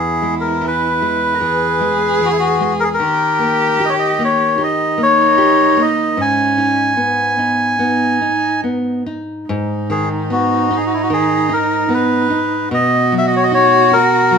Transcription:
0.00 2.96 E2 medium
0.00 1.36 E4 medium
0.00 0.35 G#4 medium
0.22 0.61 G#3 soft
0.41 0.66 A#4 medium
0.61 1.01 E3 soft
0.67 2.29 B4 loud
1.02 1.41 G#3 medium
1.35 1.43 A#4 medium
1.41 1.80 E3 soft
1.41 3.00 G#4 loud
1.81 2.20 G#3 medium
2.21 2.60 E3 soft
2.21 2.30 F#4 medium
2.32 2.37 E4 medium
2.39 2.74 F#4 medium
2.60 2.99 G#3 medium
2.80 2.89 G#4 medium
2.80 2.84 A#4 medium
2.94 3.85 A#4 medium
2.99 6.14 D#3 medium
2.99 4.58 G4 loud
3.39 3.78 A#3 medium
3.80 4.18 G4 medium
3.85 3.89 D#5 loud
3.90 3.95 C#5 medium
3.99 4.23 D#5 medium
4.19 4.57 A#3 medium
4.25 4.63 C#5 medium
4.58 6.19 D#4 loud
4.58 4.97 G4 medium
4.64 5.02 D#5 medium
4.98 5.36 A#3 medium
5.03 5.82 C#5 loud
5.38 5.77 G4 medium
5.77 6.16 A#3 medium
5.82 6.21 D#5 medium
6.17 9.43 G#2 medium
6.17 6.99 C#4 medium
6.21 8.61 G#5 loud
6.58 6.96 D#4 medium
6.97 7.36 B3 soft
6.97 7.81 B3 medium
7.39 7.78 D#4 soft
7.79 8.19 B3 medium
7.79 9.06 D#4 medium
8.21 8.62 D#4 soft
8.64 9.05 B3 soft
9.06 9.47 D#4 soft
9.48 12.68 G#2 medium
9.48 12.71 D#4 loud
9.90 10.29 D#3 medium
9.90 10.09 G#4 medium
10.30 10.69 B3 medium
10.30 10.77 F#4 medium
10.71 11.09 D#4 medium
10.77 10.85 G#4 medium
10.86 10.94 F#4 medium
10.94 11.02 E4 medium
11.03 11.11 F#4 medium
11.10 11.49 D#3 medium
11.10 11.53 G#4 medium
11.49 11.88 D#4 medium
11.49 11.93 A#4 medium
11.89 12.29 B3 medium
11.94 12.69 B4 medium
12.30 12.70 D#4 medium
12.70 14.38 B2 medium
12.70 14.38 F#4 loud
12.74 13.14 D#5 loud
13.12 13.51 F#3 medium
13.18 13.26 E5 medium
13.27 13.35 D#5 medium
13.36 13.44 C#5 medium
13.44 13.52 D#5 loud
13.52 13.90 D#4 medium
13.52 13.94 C#5 loud
13.92 14.30 F#4 medium
13.92 14.38 A#4 loud
14.31 14.38 F#3 medium

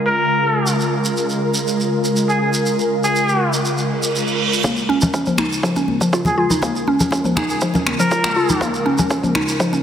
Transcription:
0.00 4.60 C#3 medium
0.00 4.60 G#3 medium
0.00 4.60 F4 medium
0.00 4.60 A#4 medium
0.06 0.75 A#4 medium
0.67 shekere medium
0.80 shekere soft
1.05 shekere medium
1.17 shekere medium
1.30 shekere soft
1.54 shekere medium
1.67 shekere medium
1.80 shekere soft
2.04 shekere medium
2.16 shekere medium
2.29 2.37 G#4 medium
2.29 shekere soft
2.41 2.50 G#4 medium
2.54 shekere medium
2.66 shekere medium
2.79 shekere soft
3.04 3.53 G#4 medium
3.04 shekere medium
3.16 shekere medium
3.29 shekere soft
3.53 shekere medium
3.65 reverse cymbal medium
3.65 shekere medium
3.78 shekere soft
4.03 shekere medium
4.15 shekere medium
4.27 shekere soft
4.53 shekere medium
4.64 9.83 C#3 medium
4.64 9.83 G#3 medium
4.64 4.71 A#3 medium
4.64 9.83 F4 medium
4.64 9.83 A#4 medium
4.64 kick loud
4.64 muted conga medium
4.64 high conga medium
4.64 shekere medium
4.77 shekere soft
4.89 5.01 C#4 loud
4.89 muted conga soft
5.01 5.13 C#4 medium
5.01 low conga loud
5.01 shekere medium
5.14 5.21 C#4 loud
5.14 kick loud
5.14 muted conga soft
5.14 shekere medium
5.26 5.37 F3 medium
5.26 high conga medium
5.26 shekere soft
5.38 5.46 D#4 loud
5.38 finger snap loud
5.38 muted conga soft
5.38 high conga medium
5.52 shekere medium
5.63 5.76 F3 medium
5.63 kick loud
5.63 shekere medium
5.76 5.87 C#4 medium
5.76 muted conga medium
5.76 shekere soft
5.88 high conga medium
6.01 6.12 F3 loud
6.01 kick medium
6.01 muted conga soft
6.01 shekere medium
6.13 6.20 F4 medium
6.13 kick loud
6.13 shekere medium
6.25 6.34 G#4 medium
6.25 muted conga soft
6.25 low conga medium
6.25 shekere soft
6.38 6.49 F4 loud
6.38 6.46 G#4 medium
6.50 6.62 D#4 medium
6.50 low conga medium
6.50 shekere medium
6.62 6.70 A#3 medium
6.62 kick loud
6.62 muted conga soft
6.62 high conga medium
6.62 shekere medium
6.76 shekere soft
6.87 6.99 C#4 loud
6.87 muted conga soft
7.00 7.11 C#4 medium
7.00 low conga loud
7.00 shekere medium
7.11 7.19 C#4 medium
7.11 kick loud
7.11 muted conga medium
7.11 shekere medium
7.24 7.36 F3 medium
7.24 high conga medium
7.24 shekere soft
7.36 7.44 D#4 loud
7.36 7.45 G#4 medium
7.36 finger snap loud
7.36 muted conga soft
7.36 high conga medium
7.36 low conga medium
7.49 7.58 G#4 medium
7.49 shekere medium
7.61 7.74 F3 medium
7.61 kick loud
7.61 shekere medium
7.74 7.85 C#4 medium
7.74 muted conga soft
7.74 low conga loud
7.74 shekere soft
7.87 finger snap medium
7.87 high conga medium
8.00 8.10 F3 loud
8.00 8.69 A#4 medium
8.00 muted conga soft
8.00 shekere medium
8.11 8.18 F4 medium
8.11 kick loud
8.11 shekere medium
8.24 finger snap medium
8.24 muted conga soft
8.24 shekere soft
8.36 8.48 F4 loud
8.49 8.61 D#4 medium
8.49 low conga medium
8.49 shekere medium
8.61 8.68 A#3 medium
8.61 kick loud
8.61 muted conga soft
8.61 high conga medium
8.61 shekere medium
8.74 shekere soft
8.86 8.97 C#4 loud
8.86 muted conga soft
8.98 9.09 C#4 medium
8.98 low conga loud
8.98 shekere medium
9.10 9.18 C#4 loud
9.10 kick loud
9.10 muted conga soft
9.10 shekere medium
9.23 9.34 F3 medium
9.23 high conga medium
9.23 shekere soft
9.35 9.42 D#4 loud
9.35 finger snap loud
9.35 muted conga soft
9.35 high conga loud
9.48 shekere medium
9.60 9.72 F3 medium
9.60 kick loud
9.60 shekere medium
9.73 9.83 C#4 medium
9.73 muted conga soft
9.73 shekere soft

